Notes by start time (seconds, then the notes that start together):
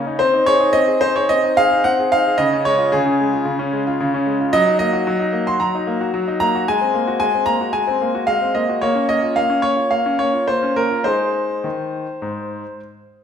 Already playing: C#3 C#4
0.07 D#4
0.19 C4 C5
0.34 D#4
0.46 G#4 C#5
0.60 D#4
0.73 C4 D#5
0.88 G#4
1.01 D#4 C5
1.16 G#4 C#5
1.29 C4 D#5
1.44 D#4
1.57 G#4 F5
1.71 D#4
1.84 C4 F#5
1.99 G#4
2.12 D#4 F5
2.26 G#4
2.38 C#3 D#5
2.53 C#4
2.65 G#3 C#5
2.78 F4
2.92 C#3 G#4
3.06 C#4
3.21 G#3
3.33 F4
3.45 C#3
3.59 C#4
3.73 G#3
3.87 F4
4.00 C#3
4.14 C#4
4.26 G#3
4.40 F4
4.53 F#3 D#5
4.67 D#4
4.79 A#3 D#5
4.93 F#4
5.07 F#3
5.19 D#4
5.33 A#3
5.47 F#4 C6
5.60 F#3 A#5
5.75 D#4
5.87 A#3
6.01 F#4
6.14 F#3
6.28 D#4
6.40 A#3 A#5
6.55 F#4
6.68 G#3 G#5
6.81 C4
6.94 A#3
7.07 F#4
7.20 G#3 G#5
7.35 C4
7.46 A#3 A#5
7.61 F#4
7.73 G#3 G#5
7.87 C4
8.02 A#3
8.15 F#4
8.27 G#3 F5
8.42 C4
8.55 A#3 D#5
8.69 F#4
8.81 A#3 C#5
8.95 C#4
9.09 A#3 D#5
9.23 F4
9.36 A#3 F5
9.50 C#4
9.62 A#3 C#5
9.76 F4
9.91 A#3 F5
10.06 C#4
10.19 A#3 C#5
10.34 F4
10.48 A#3 C5
10.63 C#4
10.76 A#3 A#4
10.91 F4
11.04 G#3 D#4 G#4 C5
11.64 D#3
12.22 G#2